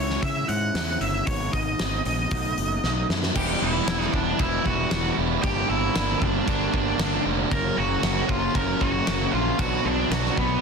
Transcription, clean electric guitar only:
0.00 0.22 C#3 medium
0.00 0.49 G#3 medium
0.00 0.48 C#4 medium
0.00 0.46 E4 medium
0.48 0.74 G#3 medium
0.48 0.75 C#4 medium
0.48 0.75 E4 medium
0.74 1.25 C#3 medium
0.74 1.26 G#3 medium
0.74 1.26 C#4 medium
0.74 1.26 E4 medium
1.26 1.77 G#2 medium
1.26 1.78 D#3 loud
1.26 1.53 G#3 medium
1.26 1.52 B3 medium
1.26 1.51 D#4 loud
1.52 1.78 G#3 medium
1.52 1.79 B3 medium
1.52 1.79 D#4 medium
1.78 2.29 G#2 medium
1.78 2.30 D#3 medium
1.78 2.06 G#3 medium
1.78 2.05 B3 medium
1.78 2.04 D#4 loud
2.05 2.31 G#3 soft
2.05 2.30 B3 medium
2.05 2.30 D#4 medium
2.31 2.82 B2 medium
2.31 2.58 F#3 medium
2.31 2.57 A3 medium
2.31 2.56 D#4 loud
2.57 2.83 F#3 medium
2.57 2.84 A3 medium
2.57 2.84 D#4 medium
2.84 3.34 B2 medium
2.84 3.34 F#3 medium
2.84 3.35 A3 medium
2.84 3.35 D#4 medium

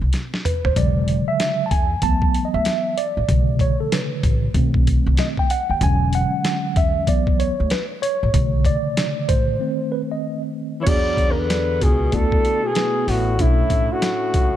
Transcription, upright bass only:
0.01 0.11 C2 medium
0.65 0.74 D#2 medium
0.76 1.17 E1 loud
1.71 1.96 E2 loud
2.02 2.43 D2 medium
2.54 2.63 D2 loud
3.17 3.26 A1 medium
3.29 3.69 B1 loud
4.23 4.48 A1 medium
4.54 4.95 B1 medium
5.06 5.16 C2 loud
5.70 5.79 D#2 medium
5.81 6.22 E1 loud
6.76 7.07 E2 medium
7.07 7.48 D2 loud
7.60 7.69 D2 medium
8.23 8.32 A1 medium
8.34 8.74 B1 loud
9.29 9.54 A1 medium
10.87 11.77 E2 loud
11.82 12.06 C#2 medium
12.13 12.38 D2 medium
13.08 13.39 A1 medium
13.39 13.64 B1 loud
13.70 13.86 A1 medium
14.34 14.56 C#2 medium

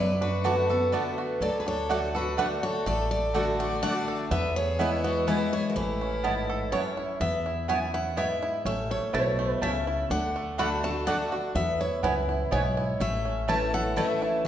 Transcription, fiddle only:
0.00 0.20 B4 medium
0.22 1.14 F#4 medium
1.42 1.58 A4 medium
1.59 1.66 G#4 medium
1.67 2.11 A4 medium
2.15 2.37 F#4 medium
2.38 2.49 F#4 medium
2.64 2.85 A4 medium
2.87 3.10 A4 medium
3.12 3.57 A4 medium
3.60 3.81 D5 medium
3.83 4.17 D5 medium
4.32 4.55 B4 medium
4.57 5.01 G#4 medium
5.05 5.26 F#4 medium
5.28 5.51 E4 medium
5.53 5.68 G#4 medium
5.70 5.76 F#4 soft
5.77 6.94 E4 medium

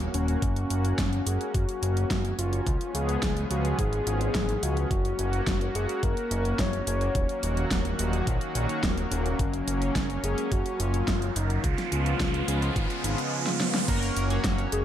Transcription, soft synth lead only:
0.14 1.28 C#4 loud
1.27 1.54 G#4 medium
1.54 2.35 F#4 loud
2.39 2.91 F4 loud
2.95 3.47 G#4 loud
3.51 3.77 F#4 medium
3.79 4.64 G#4 loud
4.63 5.75 F#4 loud
5.75 6.05 G#4 loud
6.03 6.61 A#4 loud
6.60 6.87 C#5 loud
6.88 7.40 C#5 loud
9.12 10.26 C#4 loud
10.24 10.54 G#4 loud
10.52 10.82 F#4 loud
10.80 11.38 F4 loud
11.36 11.66 D#4 loud
11.64 13.32 F4 loud
14.72 14.85 G#4 loud

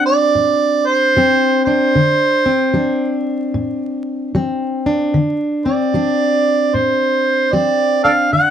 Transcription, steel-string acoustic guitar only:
0.00 0.30 F#3 medium
0.00 1.17 C4 medium
0.00 1.67 D4 medium
0.00 1.95 F#4 medium
0.35 1.09 A2 medium
1.17 1.90 F#3 medium
1.17 1.99 C4 medium
1.67 2.49 D4 medium
1.96 2.69 D3 medium
2.46 4.35 C4 medium
2.74 3.48 F#3 medium
2.74 4.86 D4 medium
3.54 4.28 A2 medium
4.35 5.08 F#3 medium
4.35 5.17 C4 medium
4.86 5.69 D4 medium
5.14 5.87 D3 medium
5.66 7.52 C4 medium
5.94 6.67 F#3 medium
5.94 8.04 D4 medium
6.74 7.47 A2 medium
7.53 8.26 F#3 medium
7.53 8.29 C4 medium
8.05 8.50 D4 medium
8.33 8.50 D3 medium

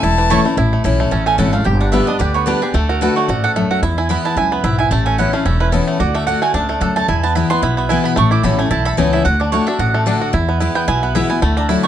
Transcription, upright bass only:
0.03 0.36 E1 medium
0.57 0.74 A1 loud
0.85 1.08 B1 medium
1.12 1.35 A1 medium
1.38 1.62 G#1 medium
1.66 1.99 G1 loud
2.20 2.53 D2 medium
2.74 3.07 D2 medium
3.28 3.61 A1 medium
3.82 4.15 E2 loud
4.37 4.60 C#2 medium
4.64 4.87 B1 medium
4.91 5.24 A1 loud
5.45 5.78 E1 medium
6.00 6.33 D2 medium
6.54 6.77 C#2 medium
6.81 7.04 D2 medium
7.08 7.41 E2 loud
7.63 7.96 B1 medium
8.17 8.33 A1 loud
8.44 8.67 A1 medium
8.71 8.94 B1 medium
8.98 9.21 C#2 medium
9.25 9.58 D2 loud
9.79 10.12 A1 medium
10.34 10.67 E2 loud
10.88 11.21 B1 medium
11.42 11.75 D2 medium

